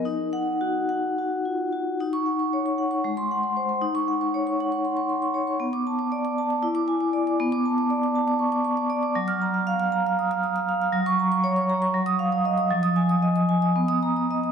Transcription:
0.05 D#4
0.33 F#5
0.61 F#4
0.89 F#5
1.18 F#4
1.45 F4
1.73 F#4
2.00 D#4
2.13 C#6
2.26 F#5
2.39 C#6
2.53 C#5
2.66 C#6
2.78 F#5
2.91 C#6
3.04 G#3
3.17 C6
3.31 F#5
3.43 C6
3.57 C5
3.69 C6
3.81 D#4
3.95 C#6
4.08 F#5
4.21 C#6
4.34 C#5
4.47 C#6
4.60 F#5
4.72 C#6
4.85 C6
4.97 C#6
5.09 C6
5.22 C#6
5.34 C#5
5.47 C#6
5.60 B3
5.73 D6
5.87 A5
5.99 D6
6.12 D5
6.25 D6
6.38 A5
6.50 D6
6.63 E4
6.75 D6
6.88 G#5
7.01 D6
7.13 D5
7.27 D6
7.40 B3
7.52 D6
7.66 A5
7.78 D6
7.90 D5
8.03 D6
8.15 A5
8.28 D6
8.39 C#6
8.52 D6
8.65 C#6
8.77 D6
8.90 D5
9.03 D6
9.15 F#3
9.28 F6
9.42 A#5
9.54 F6
9.67 F5
9.80 F6
9.92 A#5
10.07 F6
10.19 D#6
10.31 F6
10.44 D#6
10.56 F6
10.69 F5
10.82 F6
10.93 F#3
11.06 C#6
11.20 A#5
11.32 C#6
11.44 C#5
11.56 C#6
11.70 A#5
11.82 C#6
11.94 F#3
12.06 D#6
12.19 F5
12.32 D#6
12.45 D#5
12.58 D#6
12.71 F3
12.83 D#6
12.96 G#5
13.09 D#6
13.22 D#5
13.36 D#6
13.49 G#5
13.62 D#6
13.76 B3
13.88 D#6
14.03 A#5
14.17 D#6
14.31 D#5
14.44 D#6

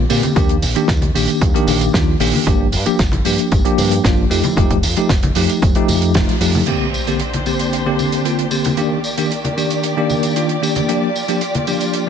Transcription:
0.09 A#2 D3 A#3 C4 G4, open hi-hat, tambourine
0.23 closed hi-hat, tambourine, high conga
0.35 D#2 D#3 A#3 D4 G4, kick, closed hi-hat, tambourine
0.49 closed hi-hat
0.62 A#1, open hi-hat, tambourine
0.76 D#3 A#3 D4 G4, muted fingered electric bass stroke, closed hi-hat, tambourine
0.88 D#2, kick, snare, closed hi-hat, tambourine
1.02 closed hi-hat, high conga
1.15 A#1 D#3 A#3 D4 G4, open hi-hat, tambourine
1.28 closed hi-hat, tambourine
1.41 D#2, kick, closed hi-hat, tambourine
1.54 D#3 A#3 D4 G4, closed hi-hat
1.67 A#1, open hi-hat, tambourine, high conga
1.81 closed hi-hat, tambourine
1.93 D#2 D#3 A#3 D4 F4, kick, snare, closed hi-hat
2.20 A#1 D#3 A#3 D4 G4, open hi-hat, tambourine
2.33 open hi-hat, tambourine, high conga
2.46 G1 F3 A#3 D4 G4, kick, closed hi-hat, tambourine
2.72 G2, open hi-hat, tambourine
2.86 F3 A#3 D4 G4, muted fingered electric bass stroke, closed hi-hat, tambourine
2.99 G1, kick, snare, closed hi-hat, tambourine
3.12 closed hi-hat, high conga
3.25 G2 F3 A#3 D4 G4, open hi-hat, tambourine
3.39 closed hi-hat, tambourine
3.52 G1, kick, closed hi-hat, tambourine
3.65 F3 A#3 D4 G4, closed hi-hat
3.78 G2, open hi-hat, tambourine, high conga
3.91 closed hi-hat, tambourine
4.03 G1 F3 A#3 D4 F4, kick, snare, closed hi-hat, tambourine
4.30 F2 F3 A3 D#4 G4, open hi-hat, tambourine
4.44 closed hi-hat, tambourine, high conga
4.56 F1 F3 A3 D#4 G4, kick, closed hi-hat
4.71 kick, closed hi-hat
4.83 F2, open hi-hat, tambourine
4.96 F3 A3 D#4 G4, muted fingered electric bass stroke, closed hi-hat, tambourine
5.09 F1, kick, snare, closed hi-hat, tambourine
5.23 closed hi-hat, high conga
5.35 F2 F3 A3 D#4 G4, open hi-hat, tambourine
5.49 closed hi-hat, tambourine
5.62 F1, kick, closed hi-hat, tambourine
5.75 F3 A3 D#4 G4, closed hi-hat
5.88 F2, open hi-hat, tambourine, high conga
6.01 closed hi-hat, tambourine
6.14 F1 F3 A3 D#4 F4, kick, snare, closed hi-hat, tambourine, low conga
6.29 closed hi-hat
6.40 F2 F3 A3 D#4 G4, open hi-hat, tambourine
6.54 open hi-hat, tambourine, high conga
6.66 D3 A#3 C4 D4 G4 C5, closed hi-hat, crash, tambourine, impact
6.94 tambourine
7.07 D3 A#3 C4 G4, closed hi-hat, tambourine
7.20 closed hi-hat, tambourine
7.33 closed hi-hat, high conga
7.46 D3 A#3 C4 G4, tambourine
7.59 closed hi-hat, tambourine
7.73 closed hi-hat, tambourine
7.86 D3 A#3 C4 G4
7.99 tambourine, high conga
8.12 closed hi-hat, tambourine
8.24 D3 A#3 C4 F4, closed hi-hat, tambourine
8.39 closed hi-hat
8.51 D3 A#3 C4 G4, tambourine
8.64 closed hi-hat, tambourine, high conga
8.77 D#3 A#3 D4 G4 D5, closed hi-hat, tambourine
9.04 tambourine
9.18 D#3 A#3 D4 G4, closed hi-hat, tambourine
9.31 closed hi-hat, tambourine
9.44 closed hi-hat, high conga
9.57 D#3 A#3 D4 G4, tambourine
9.70 closed hi-hat, tambourine
9.83 closed hi-hat, tambourine
9.97 D#3 A#3 D4 G4
10.10 tambourine, high conga
10.23 closed hi-hat, tambourine
10.36 D#3 A#3 D4 F4, closed hi-hat, tambourine
10.49 closed hi-hat
10.62 D#3 A#3 D4 G4, tambourine
10.75 closed hi-hat, tambourine, high conga
10.88 F3 A#3 D4 F4 G4, closed hi-hat, tambourine
11.16 tambourine
11.28 F3 A#3 D4 G4, closed hi-hat, tambourine
11.41 closed hi-hat, tambourine
11.55 closed hi-hat, high conga
11.67 F3 A#3 D4 G4, tambourine
11.80 closed hi-hat, tambourine
11.93 closed hi-hat, tambourine

